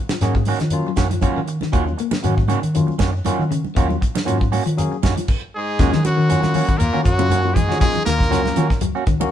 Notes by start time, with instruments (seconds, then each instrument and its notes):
0.09 clean electric guitar F3, muted clean electric guitar stroke, snare, high conga
0.21 fingered electric bass G#2, clean electric guitar D#3 A#3 C#4 F#4, tine electric piano F#3 A#3 C#4 G#4, snare, closed hi-hat, shekere
0.34 clean electric guitar F#3, kick, shekere
0.45 clean electric guitar D#3 A#3 C#4 F#4, open hi-hat, high conga, shekere
0.60 fingered electric bass D#3, clean electric guitar F3, snare, closed hi-hat, shekere
0.70 tine electric piano F#3 A#3 C#4 F4, closed hi-hat, shekere
0.86 clean electric guitar F#3, muted clean electric guitar stroke, shekere
0.96 fingered electric bass F#2, clean electric guitar D#3 A#3 C#4 F#4, kick, snare, closed hi-hat, high conga, shekere
1.10 clean electric guitar F3, muted clean electric guitar stroke, closed hi-hat, high conga, shekere
1.21 clean electric guitar D#3 A#3 C#4 F#4, tine electric piano F#3 A#3 C#4 F4, kick, closed hi-hat, high conga, shekere
1.36 fingered electric bass D#3, clean electric guitar D#3, shekere
1.48 muted clean electric guitar stroke, closed hi-hat, shekere
1.61 clean electric guitar D#3, snare, high conga, shekere
1.72 fingered electric bass D#2, clean electric guitar D#3 F#3 A#3 C#4 F#4, tine electric piano F#3 A#3 C#4 F4, kick, closed hi-hat, shekere
1.86 muted clean electric guitar stroke, shekere
1.97 clean electric guitar A#3, muted clean electric guitar stroke, closed hi-hat, shekere
2.11 muted clean electric guitar stroke, snare, high conga
2.22 fingered electric bass G#2, clean electric guitar D#3 A#3 C#4 F#4, tine electric piano F#3 A#3 C#4 F#4, closed hi-hat, shekere
2.37 muted clean electric guitar stroke, kick, shekere
2.48 clean electric guitar C#3 D#3 A#3 C#4 F#4, closed hi-hat, high conga, shekere
2.62 fingered electric bass D#3, muted clean electric guitar stroke, closed hi-hat, shekere
2.75 clean electric guitar D#3, tine electric piano F#3 A#3 C#4 F4, closed hi-hat, shekere
2.87 muted clean electric guitar stroke, high conga
2.91 shekere
2.98 fingered electric bass F#2, clean electric guitar D#3 A#3 C#4 F#4, kick, snare, closed hi-hat, high conga, shekere
3.13 muted clean electric guitar stroke, shekere
3.25 clean electric guitar D#3 A#3 C#4 F#4, tine electric piano F#3 A#3 C#4 F4, muted clean electric guitar stroke, closed hi-hat, high conga, shekere
3.39 fingered electric bass D#3, shekere
3.51 clean electric guitar C#3, muted clean electric guitar stroke, closed hi-hat, shekere
3.64 high conga, shekere
3.75 fingered electric bass D#2, clean electric guitar D#3 A#3 C#4 F#4, tine electric piano F#3 A#3 C#4 F4, muted clean electric guitar stroke, kick, closed hi-hat, shekere
3.89 clean electric guitar F#3, muted clean electric guitar stroke, high conga, shekere
4.01 muted clean electric guitar stroke, kick, closed hi-hat, shekere
4.15 muted clean electric guitar stroke, snare, high conga
4.25 fingered electric bass G#2, clean electric guitar D#3 A#3 C#4 F#4, tine electric piano F#3 A#3 C#4 F4, closed hi-hat, shekere
4.41 kick, shekere
4.52 clean electric guitar A#3 C#4 F#4, open hi-hat, high conga, shekere
4.66 fingered electric bass D#3, clean electric guitar F3, muted clean electric guitar stroke, closed hi-hat, shekere
4.77 tine electric piano F#3 A#3 C#4 G#4, closed hi-hat, shekere
4.92 muted clean electric guitar stroke, shekere
5.03 fingered electric bass F#2, clean electric guitar D#3 A#3 C#4 F#4, kick, snare, closed hi-hat, high conga, shekere
5.16 clean electric guitar F3, muted clean electric guitar stroke, closed hi-hat, high conga, shekere
5.28 kick, crash
5.55 baritone saxophone G#2, trombone G#3, trumpet G#4
5.79 fingered electric bass D#2, clean electric guitar C#3 A#3 C#4 F#4, tine electric piano F#3 A#3 C#4 F4, kick, snare, closed hi-hat, high conga, shekere
5.93 clean electric guitar D#3, fingered electric bass D#3, muted clean electric guitar stroke, snare, low conga, shekere
6.04 baritone saxophone F#2, trombone F#3, trumpet F#4, closed hi-hat, high conga, shekere
6.17 clean electric guitar D#3, muted clean electric guitar stroke, shekere
6.29 tine electric piano F#3 A#3 C#4 F4, clean electric guitar A#3 C#4 F#4, closed hi-hat, high conga, shekere
6.43 clean electric guitar F#3, muted clean electric guitar stroke, snare, high conga, shekere
6.54 clean electric guitar A#3 C#4 F#4, open hi-hat, low conga, shekere
6.68 clean electric guitar D#3, muted clean electric guitar stroke, kick, closed hi-hat, shekere
6.77 fingered electric bass D#2, baritone saxophone A#2, trombone A#3, trumpet A#4, muted clean electric guitar stroke, closed hi-hat, high conga, shekere
6.93 clean electric guitar D#3 A#3 C#4 F#4, shekere
7.01 baritone saxophone F#2, trombone F#3, trumpet F#4, muted clean electric guitar stroke
7.05 fingered electric bass F#2, kick, closed hi-hat, shekere
7.18 clean electric guitar C#3, tine electric piano F#3 A#3 C#4 F4, high conga, shekere
7.29 clean electric guitar A#3 C#4 F#4, closed hi-hat, high conga, shekere
7.43 tine electric piano F#3 A#3 C#4 F4, clean electric guitar F#3, muted clean electric guitar stroke, shekere
7.52 baritone saxophone G#2, trombone G#3, trumpet G#4, muted clean electric guitar stroke, kick, shekere
7.56 closed hi-hat, low conga
7.69 fingered electric bass D#3, clean electric guitar F3 C#4 F#4, snare, shekere
7.79 baritone saxophone G#2, tine electric piano F#3 A#3 C#4 F4, clean electric guitar F#3, trombone G#3, trumpet G#4, kick, closed hi-hat, shekere
7.93 muted clean electric guitar stroke, muted fingered electric bass stroke, low conga, shekere
8.05 fingered electric bass D#2, baritone saxophone A#2, clean electric guitar D#3, trombone A#3, trumpet A#4, snare, closed hi-hat, high conga, shekere
8.19 muted clean electric guitar stroke, kick, snare, shekere
8.30 fingered electric bass C#2, clean electric guitar C#3 A#3 C#4 F#4, tine electric piano F#3 A#3 C#4 F4, snare, closed hi-hat, high conga, shekere
8.45 snare, high conga, shekere
8.56 fingered electric bass D#3, clean electric guitar F3 A#3 C#4 F#4, closed hi-hat, low conga, shekere
8.70 muted clean electric guitar stroke, kick, snare, shekere
8.81 fingered electric bass C#2, clean electric guitar F#3, muted clean electric guitar stroke, closed hi-hat, high conga, shekere
8.95 clean electric guitar A#3 C#4 F#4, shekere
9.06 fingered electric bass C#2, clean electric guitar D#3, muted clean electric guitar stroke, kick, closed hi-hat, shekere
9.20 tine electric piano F#3 A#3 C#4 F#4, high conga, shekere